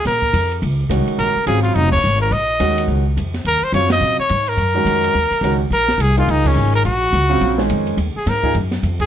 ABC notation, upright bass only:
X:1
M:4/4
L:1/8
Q:"Swing" 1/4=212
K:Ebdor
V:1 name="Upright bass" clef=bass
B,,2 F,,2 D,,2 C,, z | B,,, z A,,,2 F,,,2 A,,,2 | B,,,2 E,,2 D,,2 F,,2 | E,, z G,,2 B,, z A,,2 |
G,,2 F,,2 E,, z D,,2 | B,,,2 C,,2 D,,2 A,,,2 | B,,,2 D,,2 B,,,2 F,,2 | E,, z A,,2 G,,2 F,,2 |]